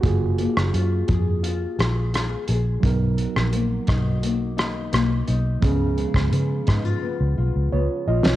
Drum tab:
HH |x-x-x-x-x-x-x-x-|x-x-x-x-x-x-x-x-|x-x-x-x---------|
SD |---r------r-r---|---r--r---r-r---|---r--r--------o|
BD |o-----o---------|o-----o---------|o--o--o---------|